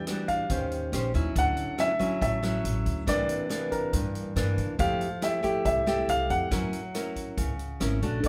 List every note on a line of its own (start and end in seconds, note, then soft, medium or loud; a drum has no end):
0.00 0.48 E3 soft
0.00 0.30 G5 medium
0.07 0.48 G3 medium
0.07 0.48 D4 soft
0.07 0.49 F#4 medium
0.07 cross-stick soft
0.07 closed hi-hat soft
0.28 1.10 F5 medium
0.28 kick soft
0.28 closed hi-hat soft
0.50 0.90 D#2 medium
0.50 1.34 D#3 soft
0.50 0.89 C#4 soft
0.50 0.90 G4 soft
0.50 0.90 C5 soft
0.50 kick medium
0.50 closed hi-hat soft
0.72 closed hi-hat soft
0.92 1.12 A#1 medium
0.92 1.11 C#4 medium
0.92 1.11 G4 medium
0.92 1.11 C5 soft
0.92 cross-stick medium
0.92 closed hi-hat soft
1.14 1.34 D#2 medium
1.14 1.75 F#3 soft
1.14 1.75 C#4 medium
1.14 1.76 E4 medium
1.14 kick soft
1.14 closed hi-hat soft
1.36 1.56 D2 loud
1.36 2.20 D3 soft
1.36 1.77 F#5 medium
1.36 kick medium
1.36 closed hi-hat soft
1.57 closed hi-hat soft
1.78 1.91 F#3 soft
1.78 1.91 C#4 medium
1.78 1.91 E4 medium
1.78 2.21 E5 medium
1.78 cross-stick soft
1.78 closed hi-hat soft
1.99 2.39 F#3 medium
1.99 2.39 C#4 medium
1.99 2.40 E4 medium
1.99 kick soft
1.99 closed hi-hat soft
2.21 2.62 A1 medium
2.21 3.05 A2 soft
2.21 3.11 E5 medium
2.21 kick medium
2.21 closed hi-hat soft
2.43 3.04 F#3 medium
2.43 3.04 C#4 medium
2.43 3.04 E4 medium
2.43 cross-stick soft
2.43 closed hi-hat soft
2.64 2.84 A1 medium
2.64 closed hi-hat soft
2.86 3.06 D2 medium
2.86 kick soft
2.86 closed hi-hat soft
3.07 3.27 C2 medium
3.07 3.91 C3 soft
3.07 3.47 E3 soft
3.07 3.47 A#3 soft
3.07 3.47 D4 medium
3.07 3.69 D5 medium
3.07 kick medium
3.07 cross-stick medium
3.07 closed hi-hat soft
3.29 closed hi-hat soft
3.49 4.33 E3 soft
3.49 4.33 A#3 soft
3.49 4.33 D4 medium
3.49 cross-stick soft
3.49 closed hi-hat soft
3.72 4.54 A#4 medium
3.72 kick soft
3.72 closed hi-hat soft
3.93 4.77 G2 soft
3.93 4.33 G2 medium
3.93 kick medium
3.93 closed hi-hat soft
4.15 closed hi-hat soft
4.36 4.56 G2 medium
4.36 4.78 E3 medium
4.36 4.78 A#3 medium
4.36 4.78 D4 medium
4.36 cross-stick medium
4.36 closed hi-hat soft
4.58 4.78 C2 medium
4.58 kick soft
4.58 closed hi-hat soft
4.79 4.99 F2 loud
4.79 5.63 F3 soft
4.79 5.07 A3 soft
4.79 5.07 E4 soft
4.79 5.07 G4 medium
4.79 5.24 F5 medium
4.79 kick medium
4.79 closed hi-hat soft
5.01 closed hi-hat soft
5.22 5.40 A3 medium
5.22 5.40 E4 medium
5.22 5.40 G4 medium
5.22 5.64 E5 medium
5.22 cross-stick soft
5.22 closed hi-hat soft
5.43 5.83 A3 medium
5.43 5.83 E4 medium
5.43 5.83 G4 medium
5.43 kick soft
5.43 closed hi-hat soft
5.65 6.05 C2 medium
5.65 6.49 C3 soft
5.65 6.06 E5 medium
5.65 kick medium
5.65 closed hi-hat soft
5.86 6.48 A3 medium
5.86 6.48 E4 medium
5.86 6.48 G4 medium
5.86 cross-stick medium
5.86 closed hi-hat soft
6.08 6.28 C2 medium
6.08 6.31 F5 medium
6.08 closed hi-hat soft
6.30 6.50 F2 medium
6.30 7.77 F#5 medium
6.30 kick soft
6.30 closed hi-hat soft
6.51 6.71 F#2 medium
6.51 7.35 F#3 soft
6.51 6.79 C#4 medium
6.51 6.79 E4 soft
6.51 6.80 A#4 medium
6.51 kick medium
6.51 cross-stick medium
6.51 closed hi-hat soft
6.73 closed hi-hat soft
6.94 7.52 C#4 soft
6.94 7.53 E4 soft
6.94 7.53 A#4 medium
6.94 cross-stick soft
6.94 closed hi-hat soft
7.16 kick soft
7.16 closed hi-hat soft
7.37 7.77 C#2 medium
7.37 8.21 C#3 soft
7.37 kick medium
7.37 closed hi-hat soft
7.59 closed hi-hat soft
7.80 8.00 G#1 medium
7.80 7.99 C#4 medium
7.80 7.99 E4 medium
7.80 7.99 A#4 medium
7.80 cross-stick medium
7.80 closed hi-hat soft
8.02 8.22 A#1 medium
8.02 8.28 A3 medium
8.02 8.28 D4 soft
8.02 8.28 F#4 medium
8.02 kick soft
8.02 closed hi-hat soft
8.20 8.28 B1 medium
8.20 8.28 B2 soft
8.20 8.28 D4 soft
8.20 8.28 A4 soft
8.20 kick medium
8.20 closed hi-hat soft
8.25 8.28 B4 soft